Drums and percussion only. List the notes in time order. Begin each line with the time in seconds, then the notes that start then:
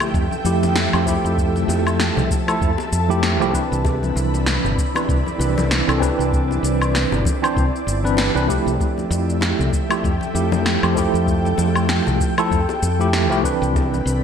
0.00 high bongo, low woodblock, shaker
0.14 kick, shaker
0.31 high conga, shaker
0.45 shaker
0.63 high bongo, high conga, shaker
0.76 snare, shaker
0.93 low woodblock, shaker
1.07 kick, high bongo, shaker
1.26 shaker
1.38 kick, shaker
1.56 high conga, shaker
1.69 high bongo, shaker
1.87 low woodblock, shaker
2.00 snare, shaker
2.17 high bongo, low conga, shaker
2.31 kick, shaker
2.48 low woodblock, shaker
2.61 kick, shaker
2.78 high bongo, shaker
2.93 shaker
3.11 shaker
3.23 snare, high bongo, shaker
3.42 shaker
3.54 kick, shaker
3.73 shaker
3.85 kick, high bongo, shaker
4.03 high conga, shaker
4.17 shaker
4.34 high bongo, shaker
4.46 snare, shaker
4.65 low conga, shaker
4.78 kick, shaker
4.95 high bongo, low woodblock, shaker
5.09 kick, shaker
5.26 high conga, shaker
5.40 high bongo, shaker
5.58 high conga, shaker
5.71 snare, shaker
5.89 low woodblock, shaker
6.02 kick, high bongo, shaker
6.20 shaker
6.32 kick, shaker
6.51 high bongo, high conga, shaker
6.64 shaker
6.82 low woodblock, shaker
6.95 snare, shaker
7.12 high bongo, low conga, shaker
7.25 kick, high conga, shaker
7.44 low woodblock, shaker
7.56 kick, high bongo, shaker
7.76 shaker
7.88 shaker
8.06 shaker
8.17 snare, high bongo, shaker
8.37 shaker
8.49 kick, shaker
8.68 high bongo, shaker
8.80 kick, high bongo, shaker
8.98 high conga, shaker
9.12 shaker
9.30 shaker
9.41 snare, high bongo, shaker
9.59 low conga, shaker
9.73 kick, shaker
9.90 high bongo, low woodblock, shaker
10.04 kick, shaker
10.21 high conga, shaker
10.36 shaker
10.52 high bongo, high conga, shaker
10.66 snare, shaker
10.83 low woodblock, shaker
10.96 kick, high bongo, shaker
11.15 shaker
11.27 kick, shaker
11.45 high conga, shaker
11.58 high bongo, shaker
11.76 low woodblock, shaker
11.89 snare, shaker
12.07 high bongo, low conga, shaker
12.20 kick, shaker
12.38 low woodblock, shaker
12.51 kick, shaker
12.69 high bongo, shaker
12.83 shaker
13.01 shaker
13.13 snare, high bongo, shaker
13.32 shaker
13.44 kick, shaker
13.63 shaker
13.75 kick, high bongo, shaker
13.94 high conga, shaker
14.07 shaker